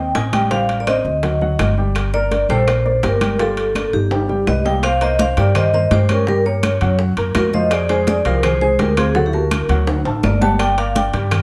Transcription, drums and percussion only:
0.15 high bongo, low bongo, high conga, high timbale
0.33 high conga, high timbale, claves
0.51 high bongo, high conga, high timbale
0.69 high conga, high timbale
0.87 high bongo, high conga, high timbale, claves
1.05 high bongo, high conga
1.23 high bongo, high conga, high timbale
1.41 high bongo, high conga
1.59 high bongo, low bongo, high conga, high timbale, claves
1.77 high bongo
1.95 high bongo, high conga, high timbale, claves
2.13 high conga
2.31 high bongo, high conga, high timbale
2.50 high conga, high timbale
2.67 high bongo, high conga, high timbale, claves
2.86 high conga
3.03 high bongo, low bongo, high conga, high timbale, low timbale
3.21 high conga, high timbale, claves
3.39 high bongo, high timbale
3.57 high conga, high timbale
3.75 high bongo, high conga, high timbale, claves
3.93 high bongo, high conga
4.11 high bongo, high conga, high timbale
4.29 high bongo, high conga
4.47 high bongo, low bongo, high conga, claves
4.65 high bongo, low timbale
4.83 high bongo, high conga, high timbale, claves
5.01 high bongo, high conga, high timbale
5.19 high bongo, high conga, high timbale
5.37 high bongo, high conga, high timbale
5.55 high bongo, high conga, low conga, high timbale, claves
5.74 high conga, low conga
5.91 high bongo, low bongo, high conga, high timbale
6.09 high bongo, high conga, high timbale, claves
6.27 high bongo, high conga
6.45 high bongo, high conga
6.63 high bongo, high conga, high timbale, claves
6.81 high bongo, high conga, high timbale
6.99 high bongo, high conga
7.17 high conga, high timbale
7.35 high bongo, low bongo, high conga, high timbale, low timbale, claves
7.53 high bongo, high conga
7.71 high bongo, high conga, high timbale, claves
7.89 high bongo, high conga, high timbale
8.07 high bongo, high conga, high timbale
8.25 high bongo, high conga, high timbale
8.43 high bongo, high conga, low conga, high timbale, claves
8.62 high conga
8.79 high bongo, low bongo, high conga, high timbale
8.97 high conga, high timbale, claves
9.15 high bongo, high conga
9.33 high bongo, high conga
9.51 high bongo, high conga, high timbale, claves
9.69 high bongo, high conga, high timbale
9.87 high bongo, high conga, high timbale
10.05 high conga, high timbale
10.24 high bongo, low bongo, high conga, low timbale, claves
10.42 high bongo, high conga, low timbale
10.59 high bongo, high conga, high timbale, claves
10.78 high bongo, high conga, high timbale
10.95 high bongo, high conga, high timbale
11.13 high bongo, high conga, high timbale
11.31 high bongo, high conga, low conga, high timbale, claves

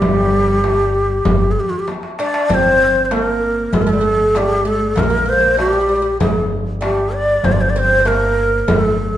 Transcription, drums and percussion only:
0.02 darbuka dum, frame drum
0.33 darbuka ka
0.64 darbuka tek, frame drum
0.95 darbuka ka
1.25 frame drum, darbuka dum
1.42 darbuka ka
1.88 darbuka tek, frame drum
2.03 darbuka ka
2.19 darbuka tek
2.34 darbuka ka
2.50 darbuka dum, frame drum
3.11 darbuka tek, frame drum
3.73 darbuka dum, frame drum
4.20 darbuka ka
4.35 darbuka tek, frame drum
4.66 darbuka ka
4.97 darbuka dum, frame drum
5.28 darbuka ka
5.59 darbuka tek, frame drum
6.21 frame drum, darbuka dum
6.67 darbuka ka
6.82 darbuka tek, frame drum
7.13 darbuka ka
7.44 darbuka dum, frame drum
7.76 darbuka ka
8.06 darbuka tek, frame drum
8.68 darbuka dum, frame drum

